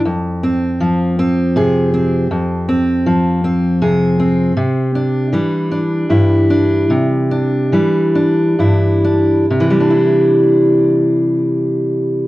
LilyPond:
\new Staff \with { instrumentName = "Steel-string acoustic guitar" } { \time 6/8 \key c \major \tempo 4. = 52 << { r8 c'4 c'8 aes'8 c'8 | r8 c'4 c'8 aes'8 c'8 | r8 d'8 g8 d'8 e'8 d'8 | r8 d'8 g8 d'8 e'8 d'8 |
<e g d' e'>2. | } \\ { f,4 f4 c4 | f,4 f4 c4 | c4 e4 g,4 | c4 e4 g,4 |
c2. | } >> }